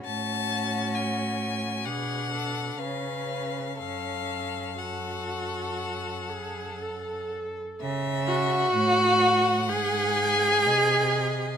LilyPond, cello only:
\new Staff \with { instrumentName = "Cello" } { \clef bass \time 4/4 \key fis \minor \tempo 4 = 62 a,2 b,4 cis4 | fis,1 | \key cis \minor cis4 a,4 gis,4 bis,4 | }